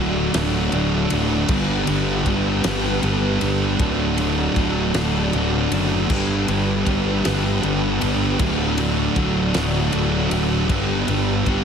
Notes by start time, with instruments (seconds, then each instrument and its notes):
Already playing: fingered electric bass D1, distorted electric guitar D3 F#3 A3 D4, string machine F#4 D5 A5
0.00 distorted electric guitar A3 D4
0.34 fingered electric bass D1, distorted electric guitar D2 A2 D3 F#3 A3 D4, snare, ride
0.72 fingered electric bass D1, distorted electric guitar D3 F#3 A3 D4, ride
1.10 fingered electric bass D1, distorted electric guitar D3 F#3 A3 D4, ride
1.49 fingered electric bass G1, distorted electric guitar G2 D3 G3 B3 D4 G4, string machine G4 B4, kick, ride
1.87 fingered electric bass G1, distorted electric guitar G3 B3 D4 G4, ride
2.26 fingered electric bass G1, distorted electric guitar G3 B3 D4 G4, kick, ride
2.64 fingered electric bass G1, distorted electric guitar G2 D3 G3 B3 D4 G4, snare, ride
3.03 fingered electric bass G1, distorted electric guitar G3 B3 D4 G4, ride
3.41 fingered electric bass G1, distorted electric guitar G3 B3 D4 G4, ride
3.79 fingered electric bass D1, distorted electric guitar D2 A2 D3 F#3 A3 D4, string machine F#4 D5, kick, ride
4.18 distorted electric guitar D3 F#3 A3 D4, ride
4.56 fingered electric bass D1, distorted electric guitar D3 F#3 A3 D4, kick, ride
4.94 fingered electric bass D1, distorted electric guitar D2 A2 D3 F#3 A3 D4, snare, ride
5.33 fingered electric bass D1, distorted electric guitar D3 F#3 A3 D4, ride
5.71 fingered electric bass F#1, distorted electric guitar D3 F#3 A3 D4, ride
6.09 fingered electric bass G1, distorted electric guitar G2 D3 G3 B3 D4 G4, string machine G4 B4, kick, crash
6.48 fingered electric bass G1, distorted electric guitar G3 B3 D4 G4, ride
6.86 fingered electric bass G1, distorted electric guitar G3 B3 D4 G4, kick, ride
7.24 fingered electric bass G1, distorted electric guitar G2 D3 G3 B3 D4 G4, snare, ride
7.63 fingered electric bass G1, distorted electric guitar G3 B3 D4 G4, ride
8.00 fingered electric bass G1, distorted electric guitar G3 B3 D4 G4, ride
8.38 fingered electric bass D1, distorted electric guitar D2 A2 D3 F#3 A3 D4, string machine F#4 D5, kick, ride
8.77 distorted electric guitar D3 F#3 A3 D4, ride
9.16 fingered electric bass D1, distorted electric guitar D3 F#3 A3 D4, kick, ride
9.54 fingered electric bass D1, distorted electric guitar D2 A2 D3 F#3 A3 D4, snare, ride
9.92 fingered electric bass D1, distorted electric guitar D3 F#3 A3 D4, ride
10.31 fingered electric bass D1, distorted electric guitar D3 F#3 A3 D4, ride
10.69 fingered electric bass G1, distorted electric guitar G2 D3 G3 B3 D4 G4, string machine G4 B4 A5, kick, ride
11.08 fingered electric bass G1, distorted electric guitar G3 B3 D4 G4, ride
11.46 fingered electric bass G1, distorted electric guitar G3 B3 D4 G4, kick, ride